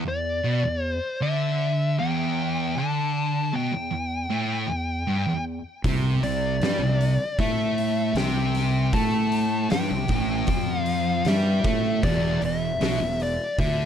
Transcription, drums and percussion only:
0, 0, Header, 1, 2, 480
1, 0, Start_track
1, 0, Tempo, 773196
1, 1714, Time_signature, 4, 2, 24, 8
1, 8601, End_track
2, 0, Start_track
2, 0, Title_t, "Drums"
2, 3628, Note_on_c, 9, 36, 106
2, 3630, Note_on_c, 9, 46, 83
2, 3690, Note_off_c, 9, 36, 0
2, 3692, Note_off_c, 9, 46, 0
2, 3870, Note_on_c, 9, 46, 59
2, 3932, Note_off_c, 9, 46, 0
2, 4107, Note_on_c, 9, 46, 72
2, 4117, Note_on_c, 9, 38, 115
2, 4169, Note_off_c, 9, 46, 0
2, 4179, Note_off_c, 9, 38, 0
2, 4350, Note_on_c, 9, 46, 53
2, 4412, Note_off_c, 9, 46, 0
2, 4586, Note_on_c, 9, 36, 106
2, 4587, Note_on_c, 9, 46, 72
2, 4648, Note_off_c, 9, 36, 0
2, 4649, Note_off_c, 9, 46, 0
2, 4829, Note_on_c, 9, 46, 58
2, 4891, Note_off_c, 9, 46, 0
2, 5063, Note_on_c, 9, 46, 74
2, 5073, Note_on_c, 9, 38, 104
2, 5125, Note_off_c, 9, 46, 0
2, 5135, Note_off_c, 9, 38, 0
2, 5306, Note_on_c, 9, 46, 60
2, 5315, Note_on_c, 9, 38, 34
2, 5368, Note_off_c, 9, 46, 0
2, 5378, Note_off_c, 9, 38, 0
2, 5543, Note_on_c, 9, 46, 89
2, 5544, Note_on_c, 9, 36, 115
2, 5605, Note_off_c, 9, 46, 0
2, 5606, Note_off_c, 9, 36, 0
2, 5784, Note_on_c, 9, 46, 67
2, 5846, Note_off_c, 9, 46, 0
2, 6022, Note_on_c, 9, 46, 82
2, 6032, Note_on_c, 9, 38, 118
2, 6085, Note_off_c, 9, 46, 0
2, 6094, Note_off_c, 9, 38, 0
2, 6259, Note_on_c, 9, 46, 59
2, 6265, Note_on_c, 9, 36, 102
2, 6321, Note_off_c, 9, 46, 0
2, 6327, Note_off_c, 9, 36, 0
2, 6499, Note_on_c, 9, 46, 79
2, 6505, Note_on_c, 9, 36, 113
2, 6561, Note_off_c, 9, 46, 0
2, 6567, Note_off_c, 9, 36, 0
2, 6741, Note_on_c, 9, 46, 56
2, 6803, Note_off_c, 9, 46, 0
2, 6983, Note_on_c, 9, 46, 75
2, 6993, Note_on_c, 9, 38, 93
2, 7046, Note_off_c, 9, 46, 0
2, 7055, Note_off_c, 9, 38, 0
2, 7227, Note_on_c, 9, 46, 55
2, 7229, Note_on_c, 9, 36, 112
2, 7237, Note_on_c, 9, 38, 30
2, 7289, Note_off_c, 9, 46, 0
2, 7291, Note_off_c, 9, 36, 0
2, 7299, Note_off_c, 9, 38, 0
2, 7470, Note_on_c, 9, 36, 116
2, 7470, Note_on_c, 9, 46, 80
2, 7532, Note_off_c, 9, 36, 0
2, 7532, Note_off_c, 9, 46, 0
2, 7709, Note_on_c, 9, 46, 55
2, 7771, Note_off_c, 9, 46, 0
2, 7953, Note_on_c, 9, 46, 83
2, 7963, Note_on_c, 9, 38, 113
2, 8015, Note_off_c, 9, 46, 0
2, 8025, Note_off_c, 9, 38, 0
2, 8193, Note_on_c, 9, 46, 52
2, 8255, Note_off_c, 9, 46, 0
2, 8434, Note_on_c, 9, 36, 107
2, 8435, Note_on_c, 9, 46, 70
2, 8496, Note_off_c, 9, 36, 0
2, 8497, Note_off_c, 9, 46, 0
2, 8601, End_track
0, 0, End_of_file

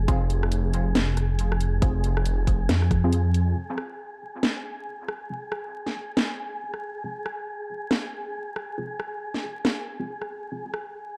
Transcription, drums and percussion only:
0, 0, Header, 1, 2, 480
1, 0, Start_track
1, 0, Key_signature, -4, "minor"
1, 0, Tempo, 434783
1, 92, Time_signature, 4, 2, 24, 8
1, 12333, End_track
2, 0, Start_track
2, 0, Title_t, "Drums"
2, 91, Note_on_c, 9, 36, 113
2, 92, Note_on_c, 9, 42, 78
2, 201, Note_off_c, 9, 36, 0
2, 203, Note_off_c, 9, 42, 0
2, 332, Note_on_c, 9, 42, 54
2, 442, Note_off_c, 9, 42, 0
2, 476, Note_on_c, 9, 37, 80
2, 571, Note_on_c, 9, 42, 76
2, 587, Note_off_c, 9, 37, 0
2, 681, Note_off_c, 9, 42, 0
2, 812, Note_on_c, 9, 42, 51
2, 923, Note_off_c, 9, 42, 0
2, 1051, Note_on_c, 9, 38, 116
2, 1051, Note_on_c, 9, 42, 79
2, 1162, Note_off_c, 9, 38, 0
2, 1162, Note_off_c, 9, 42, 0
2, 1291, Note_on_c, 9, 37, 53
2, 1291, Note_on_c, 9, 42, 54
2, 1402, Note_off_c, 9, 37, 0
2, 1402, Note_off_c, 9, 42, 0
2, 1531, Note_on_c, 9, 42, 74
2, 1641, Note_off_c, 9, 42, 0
2, 1676, Note_on_c, 9, 37, 84
2, 1772, Note_on_c, 9, 42, 52
2, 1786, Note_off_c, 9, 37, 0
2, 1882, Note_off_c, 9, 42, 0
2, 2010, Note_on_c, 9, 36, 116
2, 2011, Note_on_c, 9, 42, 81
2, 2120, Note_off_c, 9, 36, 0
2, 2121, Note_off_c, 9, 42, 0
2, 2251, Note_on_c, 9, 42, 54
2, 2361, Note_off_c, 9, 42, 0
2, 2395, Note_on_c, 9, 37, 82
2, 2491, Note_on_c, 9, 42, 77
2, 2506, Note_off_c, 9, 37, 0
2, 2601, Note_off_c, 9, 42, 0
2, 2730, Note_on_c, 9, 36, 57
2, 2731, Note_on_c, 9, 42, 55
2, 2840, Note_off_c, 9, 36, 0
2, 2842, Note_off_c, 9, 42, 0
2, 2971, Note_on_c, 9, 38, 118
2, 2971, Note_on_c, 9, 42, 81
2, 3081, Note_off_c, 9, 38, 0
2, 3081, Note_off_c, 9, 42, 0
2, 3115, Note_on_c, 9, 37, 58
2, 3210, Note_on_c, 9, 36, 60
2, 3211, Note_off_c, 9, 37, 0
2, 3211, Note_on_c, 9, 37, 55
2, 3211, Note_on_c, 9, 42, 53
2, 3320, Note_off_c, 9, 36, 0
2, 3321, Note_off_c, 9, 37, 0
2, 3321, Note_off_c, 9, 42, 0
2, 3449, Note_on_c, 9, 42, 76
2, 3560, Note_off_c, 9, 42, 0
2, 3691, Note_on_c, 9, 42, 56
2, 3801, Note_off_c, 9, 42, 0
2, 4170, Note_on_c, 9, 37, 76
2, 4281, Note_off_c, 9, 37, 0
2, 4891, Note_on_c, 9, 38, 104
2, 5002, Note_off_c, 9, 38, 0
2, 5613, Note_on_c, 9, 37, 76
2, 5723, Note_off_c, 9, 37, 0
2, 6091, Note_on_c, 9, 37, 76
2, 6202, Note_off_c, 9, 37, 0
2, 6476, Note_on_c, 9, 38, 35
2, 6586, Note_off_c, 9, 38, 0
2, 6811, Note_on_c, 9, 38, 114
2, 6922, Note_off_c, 9, 38, 0
2, 7436, Note_on_c, 9, 37, 58
2, 7546, Note_off_c, 9, 37, 0
2, 8012, Note_on_c, 9, 37, 72
2, 8122, Note_off_c, 9, 37, 0
2, 8730, Note_on_c, 9, 38, 114
2, 8841, Note_off_c, 9, 38, 0
2, 9451, Note_on_c, 9, 37, 73
2, 9561, Note_off_c, 9, 37, 0
2, 9931, Note_on_c, 9, 37, 72
2, 10042, Note_off_c, 9, 37, 0
2, 10316, Note_on_c, 9, 38, 35
2, 10427, Note_off_c, 9, 38, 0
2, 10652, Note_on_c, 9, 38, 118
2, 10762, Note_off_c, 9, 38, 0
2, 11277, Note_on_c, 9, 37, 56
2, 11388, Note_off_c, 9, 37, 0
2, 11852, Note_on_c, 9, 37, 71
2, 11963, Note_off_c, 9, 37, 0
2, 12333, End_track
0, 0, End_of_file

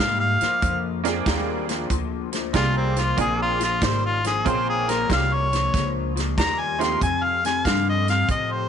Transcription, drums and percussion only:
0, 0, Header, 1, 2, 480
1, 0, Start_track
1, 0, Tempo, 638298
1, 1430, Time_signature, 4, 2, 24, 8
1, 6532, End_track
2, 0, Start_track
2, 0, Title_t, "Drums"
2, 0, Note_on_c, 9, 38, 99
2, 73, Note_off_c, 9, 38, 0
2, 306, Note_on_c, 9, 42, 55
2, 318, Note_on_c, 9, 38, 34
2, 382, Note_off_c, 9, 42, 0
2, 394, Note_off_c, 9, 38, 0
2, 467, Note_on_c, 9, 42, 79
2, 469, Note_on_c, 9, 36, 83
2, 543, Note_off_c, 9, 42, 0
2, 544, Note_off_c, 9, 36, 0
2, 788, Note_on_c, 9, 42, 63
2, 800, Note_on_c, 9, 38, 32
2, 863, Note_off_c, 9, 42, 0
2, 875, Note_off_c, 9, 38, 0
2, 948, Note_on_c, 9, 42, 79
2, 949, Note_on_c, 9, 36, 86
2, 960, Note_on_c, 9, 38, 99
2, 1023, Note_off_c, 9, 42, 0
2, 1024, Note_off_c, 9, 36, 0
2, 1035, Note_off_c, 9, 38, 0
2, 1270, Note_on_c, 9, 42, 65
2, 1282, Note_on_c, 9, 38, 33
2, 1345, Note_off_c, 9, 42, 0
2, 1357, Note_off_c, 9, 38, 0
2, 1428, Note_on_c, 9, 42, 80
2, 1430, Note_on_c, 9, 36, 74
2, 1503, Note_off_c, 9, 42, 0
2, 1505, Note_off_c, 9, 36, 0
2, 1749, Note_on_c, 9, 42, 65
2, 1761, Note_on_c, 9, 38, 34
2, 1824, Note_off_c, 9, 42, 0
2, 1836, Note_off_c, 9, 38, 0
2, 1907, Note_on_c, 9, 42, 79
2, 1910, Note_on_c, 9, 36, 84
2, 1919, Note_on_c, 9, 38, 106
2, 1982, Note_off_c, 9, 42, 0
2, 1985, Note_off_c, 9, 36, 0
2, 1994, Note_off_c, 9, 38, 0
2, 2229, Note_on_c, 9, 42, 57
2, 2241, Note_on_c, 9, 38, 31
2, 2304, Note_off_c, 9, 42, 0
2, 2316, Note_off_c, 9, 38, 0
2, 2387, Note_on_c, 9, 42, 85
2, 2390, Note_on_c, 9, 36, 88
2, 2462, Note_off_c, 9, 42, 0
2, 2465, Note_off_c, 9, 36, 0
2, 2711, Note_on_c, 9, 42, 58
2, 2723, Note_on_c, 9, 38, 33
2, 2787, Note_off_c, 9, 42, 0
2, 2799, Note_off_c, 9, 38, 0
2, 2868, Note_on_c, 9, 42, 82
2, 2871, Note_on_c, 9, 36, 83
2, 2880, Note_on_c, 9, 38, 101
2, 2944, Note_off_c, 9, 42, 0
2, 2946, Note_off_c, 9, 36, 0
2, 2956, Note_off_c, 9, 38, 0
2, 3192, Note_on_c, 9, 42, 63
2, 3204, Note_on_c, 9, 38, 36
2, 3267, Note_off_c, 9, 42, 0
2, 3279, Note_off_c, 9, 38, 0
2, 3353, Note_on_c, 9, 36, 76
2, 3354, Note_on_c, 9, 42, 76
2, 3428, Note_off_c, 9, 36, 0
2, 3429, Note_off_c, 9, 42, 0
2, 3675, Note_on_c, 9, 42, 60
2, 3687, Note_on_c, 9, 38, 33
2, 3750, Note_off_c, 9, 42, 0
2, 3762, Note_off_c, 9, 38, 0
2, 3834, Note_on_c, 9, 36, 81
2, 3834, Note_on_c, 9, 42, 71
2, 3846, Note_on_c, 9, 38, 102
2, 3909, Note_off_c, 9, 36, 0
2, 3909, Note_off_c, 9, 42, 0
2, 3921, Note_off_c, 9, 38, 0
2, 4157, Note_on_c, 9, 42, 53
2, 4169, Note_on_c, 9, 38, 30
2, 4233, Note_off_c, 9, 42, 0
2, 4245, Note_off_c, 9, 38, 0
2, 4315, Note_on_c, 9, 36, 88
2, 4319, Note_on_c, 9, 42, 77
2, 4331, Note_on_c, 9, 38, 34
2, 4391, Note_off_c, 9, 36, 0
2, 4395, Note_off_c, 9, 42, 0
2, 4407, Note_off_c, 9, 38, 0
2, 4640, Note_on_c, 9, 42, 59
2, 4652, Note_on_c, 9, 38, 34
2, 4716, Note_off_c, 9, 42, 0
2, 4728, Note_off_c, 9, 38, 0
2, 4796, Note_on_c, 9, 36, 86
2, 4799, Note_on_c, 9, 42, 76
2, 4811, Note_on_c, 9, 38, 113
2, 4871, Note_off_c, 9, 36, 0
2, 4874, Note_off_c, 9, 42, 0
2, 4886, Note_off_c, 9, 38, 0
2, 5121, Note_on_c, 9, 42, 65
2, 5133, Note_on_c, 9, 38, 35
2, 5196, Note_off_c, 9, 42, 0
2, 5208, Note_off_c, 9, 38, 0
2, 5275, Note_on_c, 9, 36, 83
2, 5277, Note_on_c, 9, 42, 83
2, 5350, Note_off_c, 9, 36, 0
2, 5352, Note_off_c, 9, 42, 0
2, 5599, Note_on_c, 9, 42, 62
2, 5611, Note_on_c, 9, 38, 32
2, 5675, Note_off_c, 9, 42, 0
2, 5687, Note_off_c, 9, 38, 0
2, 5754, Note_on_c, 9, 36, 75
2, 5756, Note_on_c, 9, 42, 81
2, 5768, Note_on_c, 9, 38, 100
2, 5829, Note_off_c, 9, 36, 0
2, 5831, Note_off_c, 9, 42, 0
2, 5843, Note_off_c, 9, 38, 0
2, 6076, Note_on_c, 9, 42, 59
2, 6088, Note_on_c, 9, 38, 33
2, 6151, Note_off_c, 9, 42, 0
2, 6163, Note_off_c, 9, 38, 0
2, 6231, Note_on_c, 9, 36, 83
2, 6231, Note_on_c, 9, 42, 82
2, 6306, Note_off_c, 9, 42, 0
2, 6307, Note_off_c, 9, 36, 0
2, 6532, End_track
0, 0, End_of_file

